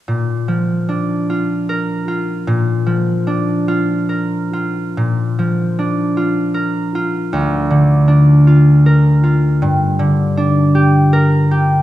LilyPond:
\new Staff \with { instrumentName = "Harp" } { \time 6/8 \key bes \major \tempo 4. = 52 << { r2 bes'4~ | bes'2.~ | bes'2 bes'4~ | bes'2 bes'4~ |
bes'2 bes'4 | } \\ { bes,8 f8 d'8 f'4 f'8 | bes,8 f8 d'8 f'8 bes'8 f'8 | bes,8 f8 d'8 f'4 f'8 | d,8 d8 d'8 f'4 f'8 |
g,8 d8 d'8 g'4 g'8 | } >> }